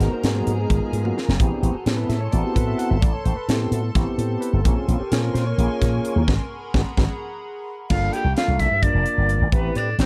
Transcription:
Already playing: tonewheel organ B3 D#4 F#4 A#4, ambient pad G#4 G#5 A#5
0.00 snare, closed hi-hat
0.13 tonewheel organ A#3 D#4 F#4 A#4
0.24 slap bass G#2, tonewheel organ A#3 B3 D#4 G#4, snare, closed hi-hat
0.37 tonewheel organ F#3 B3 D#4 F#4
0.47 slap bass G#2, closed hi-hat
0.60 tonewheel organ G#3 B3 D#4 G#4
0.69 slap bass G#1, tonewheel organ B3 D#4 F4 A#4, kick, closed hi-hat
0.93 slap bass G#2, closed hi-hat
1.05 tonewheel organ F#3 B3 D#4 F#4, high tom
1.18 snare
1.28 slap bass F#1, snare
1.39 slap bass A1, tonewheel organ B3 C4 E4 G4, ambient pad A4 A5 C6, kick, closed hi-hat
1.52 tonewheel organ D4
1.63 slap bass A1, tonewheel organ E4, closed hi-hat
1.75 tonewheel organ F#4
1.85 slap bass A2, tonewheel organ B3 C4 E4 G4, snare, closed hi-hat
1.97 tonewheel organ B4
2.09 slap bass A2, tonewheel organ E5, snare, closed hi-hat
2.20 tonewheel organ C#5
2.32 slap bass A1, tonewheel organ B3 C4 E4 F#4 D5, closed hi-hat
2.44 tonewheel organ G4
2.55 slap bass A2, tonewheel organ B4, kick, closed hi-hat
2.67 tonewheel organ E5
2.78 tonewheel organ F#5, closed hi-hat
2.90 slap bass G1, tonewheel organ E5
3.01 slap bass A1, tonewheel organ D5, kick, closed hi-hat
3.13 tonewheel organ C#5
3.24 slap bass A1, tonewheel organ C5, closed hi-hat
3.36 tonewheel organ B4
3.48 slap bass A2, tonewheel organ B3 C4 E4 G4 A4, snare, closed hi-hat
3.60 tonewheel organ G4
3.72 slap bass A2, tonewheel organ F#4, closed hi-hat
3.83 tonewheel organ B3
3.95 slap bass A1, tonewheel organ B3 C4 E4 G4, kick, snare, closed hi-hat
4.18 slap bass A2, closed hi-hat
4.41 tonewheel organ B4, closed hi-hat
4.53 slap bass G1, tonewheel organ A4
4.64 slap bass A#1, tonewheel organ C4 C#4 F4 G#4 A#4, ambient pad A#4 G#5 C6 C#6, kick, closed hi-hat
4.75 tonewheel organ G#4
4.87 slap bass A#1, tonewheel organ F4, closed hi-hat
5.00 tonewheel organ G4
5.12 slap bass A#2, tonewheel organ C4 C#4 F4 G#4 A#4, snare, closed hi-hat
5.23 tonewheel organ A#4
5.34 slap bass A#2, tonewheel organ C5, snare, closed hi-hat
5.47 tonewheel organ C#5
5.58 slap bass A#1, tonewheel organ A#3 C#4 F4 G#4, closed hi-hat
5.82 slap bass A#2, kick, snare, closed hi-hat
6.05 closed hi-hat
6.16 slap bass D#2
6.27 slap bass G#1, tonewheel organ D#4 F#4 G#4 B4, ambient pad G#4 F#5 A#5 B5, kick, snare
6.74 slap bass G#1, tonewheel organ D#4 F#4 G#4 B4, kick, snare
6.97 slap bass G#1, tonewheel organ D#4 F#4 G#4 B4, kick, snare
7.90 slap bass G1, tonewheel organ A#3 D4 F4 A4, hollow-body jazz guitar F4, flute F5, kick, crash
8.13 hollow-body jazz guitar G4, flute G5, closed hi-hat
8.24 slap bass C2
8.36 tonewheel organ A#3 D4 F4 A4, hollow-body jazz guitar F4, flute F5, snare, closed hi-hat
8.48 slap bass C2
8.59 hollow-body jazz guitar E4, flute E5, kick, snare, closed hi-hat
8.71 slap bass G2
8.83 tonewheel organ A#3 D4 F4 A#4, hollow-body jazz guitar D4, flute D5, kick, closed hi-hat
8.95 slap bass F1
9.06 closed hi-hat
9.18 slap bass G1
9.29 closed hi-hat
9.41 slap bass G#1
9.52 slap bass A1, hollow-body jazz guitar B3, tonewheel organ C4 E4 G4 B4, flute B4, kick, closed hi-hat
9.75 slap bass A2, hollow-body jazz guitar D4, flute D5, closed hi-hat
9.98 slap bass A1, tonewheel organ C4 E4 G4 C5, hollow-body jazz guitar C4, flute C5, snare, closed hi-hat

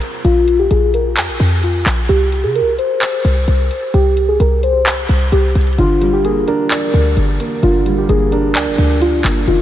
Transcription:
Already playing: synth keys A#4
0.01 closed hi-hat
0.25 808-style bass A#1, synth keys F4, closed hi-hat
0.48 closed hi-hat
0.59 synth keys G4
0.71 808-style bass A#1, synth keys G#4, closed hi-hat
0.94 synth keys A#4, closed hi-hat
1.17 808-style bass F2, clap, closed hi-hat
1.28 808-style bass A#1
1.40 808-style bass F2, closed hi-hat
1.63 synth keys F4, closed hi-hat
1.86 808-style bass A#1, clap, closed hi-hat
2.09 808-style bass C2, synth keys G4, closed hi-hat
2.32 closed hi-hat
2.44 808-style bass C3, synth keys G#4
2.55 synth keys A#4, closed hi-hat
2.61 808-style bass C2
2.78 synth keys C5, closed hi-hat
3.02 clap, closed hi-hat
3.25 808-style bass C2, closed hi-hat
3.48 808-style bass C2, closed hi-hat
3.71 closed hi-hat
3.94 808-style bass C2, synth keys G4, closed hi-hat
4.17 closed hi-hat
4.29 synth keys G#4
4.40 808-style bass C2, synth keys A#4, closed hi-hat
4.63 synth keys C5, closed hi-hat
4.86 clap, closed hi-hat
5.09 808-style bass C2, closed hi-hat
5.21 closed hi-hat
5.32 808-style bass C2, synth keys G4, closed hi-hat
5.55 808-style bass C2, closed hi-hat
5.61 closed hi-hat
5.67 closed hi-hat
5.73 closed hi-hat
5.78 808-style bass G1, grand piano D3, synth keys F4, closed hi-hat
6.01 grand piano G3, closed hi-hat
6.13 synth keys G4
6.24 grand piano A#3, synth keys G#4, closed hi-hat
6.48 grand piano D4, synth keys A#4, closed hi-hat
6.71 grand piano D5, clap, closed hi-hat
6.94 808-style bass D2, grand piano D3, closed hi-hat
7.17 808-style bass G1, closed hi-hat
7.40 grand piano A#3, closed hi-hat
7.63 808-style bass G1, grand piano D3, synth keys F4, closed hi-hat
7.86 grand piano G3, closed hi-hat
7.98 synth keys G4
8.09 808-style bass G1, grand piano A#3, synth keys G#4, closed hi-hat
8.32 grand piano D4, synth keys A#4, closed hi-hat
8.55 808-style bass D2, grand piano D5, clap, closed hi-hat
8.67 808-style bass G1
8.78 808-style bass D2, grand piano D3, closed hi-hat
9.01 synth keys F4, closed hi-hat
9.24 808-style bass G1, grand piano A#3, clap, closed hi-hat
9.47 808-style bass F1, grand piano D#3, synth keys F4, closed hi-hat

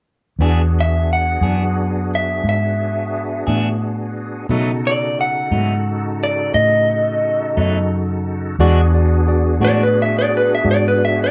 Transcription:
0.39 fingered electric bass E2, clean electric guitar E3 B3 D4 G#4, tonewheel organ B3 D4 F#4 G#4
0.80 clean electric guitar E5
1.13 clean electric guitar F#5
1.41 fingered electric bass F#2, clean electric guitar E3 B3 D4 G#4
2.15 clean electric guitar E5
2.44 fingered electric bass G#2
2.49 clean electric guitar E5
3.47 fingered electric bass A2, clean electric guitar E3 B3 D4 G#4
4.49 fingered electric bass B2, clean electric guitar B2 F#3 A3 D#4, tonewheel organ C#3 D#4 F#4 A4
4.87 clean electric guitar D5
5.21 clean electric guitar F#5
5.51 fingered electric bass G#2, clean electric guitar B2 F#3 A3 D#4
6.23 clean electric guitar D5
6.54 fingered electric bass A2, clean electric guitar D#5
7.57 fingered electric bass F#2, clean electric guitar B2 F#3 A3 D#4
8.59 fingered electric bass E2, clean electric guitar E3 G#3 D4 F#4, tonewheel organ B3 D4 F#4 G#4, tine electric piano F#4 G#4 D5
8.93 tine electric piano F#4 G#4 D5
9.27 tine electric piano F#4 G#4 D5
9.60 fingered electric bass A2, clean electric guitar E3 G#3 D4 F#4, tine electric piano F#4 G#4 D5
9.65 clean electric guitar D5
9.83 clean electric guitar B4
9.95 tine electric piano F#4 G#4 D5
10.02 clean electric guitar E5
10.19 clean electric guitar D5
10.29 tine electric piano F#4 G#4 D5
10.37 clean electric guitar B4
10.55 clean electric guitar E5
10.63 fingered electric bass G#2, tine electric piano F#4 G#4 D5
10.71 clean electric guitar D5
10.88 clean electric guitar B4
10.97 tine electric piano F#4 G#4 D5
11.05 clean electric guitar E5
11.24 clean electric guitar D5

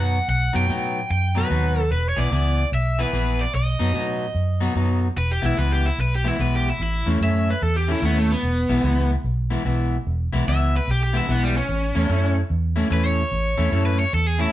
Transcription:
Already playing: fingered electric bass F#2, clean electric guitar B2 F#3 B3 D#4, overdriven electric guitar F#5
0.28 fingered electric bass B1, overdriven electric guitar F#5
0.53 fingered electric bass F#2, clean electric guitar B2 F#3 B3 D#4, overdriven electric guitar G5
0.69 fingered electric bass A2, clean electric guitar B2 F#3 B3 D#4
1.10 fingered electric bass F#2, overdriven electric guitar G5
1.35 clean electric guitar B2 F#3 B3 D#4, overdriven electric guitar B4
1.49 fingered electric bass D#2, clean electric guitar B2 F#3 B3 D#4
1.80 overdriven electric guitar A4
1.91 fingered electric bass E1, overdriven electric guitar B4
2.09 overdriven electric guitar C#5
2.16 fingered electric bass B1, clean electric guitar E3 B3 E4 G#4, overdriven electric guitar D5
2.31 fingered electric bass C#2, clean electric guitar E3 B3 E4 G#4
2.72 fingered electric bass B1, overdriven electric guitar E5
2.99 clean electric guitar E3 B3 E4 G#4, overdriven electric guitar B4
3.13 fingered electric bass A#1, clean electric guitar E3 B3 E4 G#4
3.41 overdriven electric guitar D5
3.54 fingered electric bass B1, overdriven electric guitar D#5
3.79 fingered electric bass F#2, clean electric guitar B2 F#3 B3 D#4
3.94 fingered electric bass A2, clean electric guitar B2 F#3 B3 D#4
4.35 fingered electric bass F#2
4.61 clean electric guitar B2 F#3 B3 D#4
4.75 fingered electric bass F#2, clean electric guitar B2 F#3 B3 D#4
5.16 fingered electric bass E1, overdriven electric guitar B4
5.32 overdriven electric guitar G4
5.42 fingered electric bass B1, clean electric guitar E3 G#3 B3 E4, overdriven electric guitar E4
5.57 fingered electric bass C#2, clean electric guitar E3 G#3 B3 E4, overdriven electric guitar B4
5.72 overdriven electric guitar G4
5.86 overdriven electric guitar E4
5.98 fingered electric bass B1, overdriven electric guitar B4
6.15 overdriven electric guitar G4
6.24 clean electric guitar E3 G#3 B3 E4, overdriven electric guitar E4
6.39 fingered electric bass B1, clean electric guitar E3 G#3 B3 E4, overdriven electric guitar B4
6.56 overdriven electric guitar G4
6.70 overdriven electric guitar E4
6.80 fingered electric bass A1, overdriven electric guitar E4
7.06 fingered electric bass E2, clean electric guitar A2 A3 C#4 E4
7.21 fingered electric bass F#2, clean electric guitar A2 A3 C#4 E4, overdriven electric guitar E5
7.50 overdriven electric guitar B4
7.62 fingered electric bass E2, overdriven electric guitar A4
7.76 overdriven electric guitar G4
7.88 clean electric guitar A2 A3 C#4 E4, overdriven electric guitar E4
8.02 fingered electric bass D#2, clean electric guitar A2 A3 C#4 E4, overdriven electric guitar B3
8.19 overdriven electric guitar A3
8.32 overdriven electric guitar B3
8.43 fingered electric bass E1
8.69 fingered electric bass B1, clean electric guitar E3 G#3 B3 E4
8.83 fingered electric bass C#2, clean electric guitar E3 G#3 B3 E4
9.24 fingered electric bass B1
9.50 clean electric guitar E3 G#3 B3 E4
9.65 fingered electric bass B1, clean electric guitar E3 G#3 B3 E4
10.06 fingered electric bass E1
10.33 fingered electric bass B1, clean electric guitar E3 G#3 B3 E4
10.47 fingered electric bass C#2, clean electric guitar E3 G#3 B3 E4, overdriven electric guitar E5
10.77 overdriven electric guitar B4
10.88 fingered electric bass B1, overdriven electric guitar G4
11.03 overdriven electric guitar G4
11.13 clean electric guitar E3 G#3 B3 E4, overdriven electric guitar E4
11.28 fingered electric bass B1, clean electric guitar E3 G#3 B3 E4, overdriven electric guitar B3
11.43 overdriven electric guitar G3
11.57 overdriven electric guitar C#4
11.69 fingered electric bass A1
11.95 fingered electric bass E2, clean electric guitar A2 A3 C#4 E4
12.09 fingered electric bass F#2, clean electric guitar A2 A3 C#4 E4
12.50 fingered electric bass E2
12.76 clean electric guitar A2 A3 C#4 E4
12.90 fingered electric bass E2, clean electric guitar A2 A3 C#4 E4, overdriven electric guitar B4
13.06 overdriven electric guitar C#5
13.32 fingered electric bass A1
13.57 fingered electric bass E2, clean electric guitar A2 A3 C#4 E4
13.72 fingered electric bass F#2, clean electric guitar A2 A3 C#4 E4
13.86 overdriven electric guitar B4
14.00 overdriven electric guitar C#5
14.13 fingered electric bass E2, overdriven electric guitar A4
14.27 overdriven electric guitar G#4
14.39 clean electric guitar A2 A3 C#4 E4, overdriven electric guitar E4

